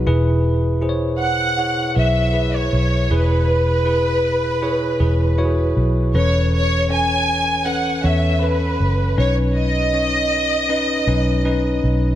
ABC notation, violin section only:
X:1
M:4/4
L:1/16
Q:1/4=79
K:E
V:1 name="Violin section"
z6 f4 e3 c3 | B12- B2 z2 | c2 c2 g4 f2 e2 B4 | c2 d12 z2 |]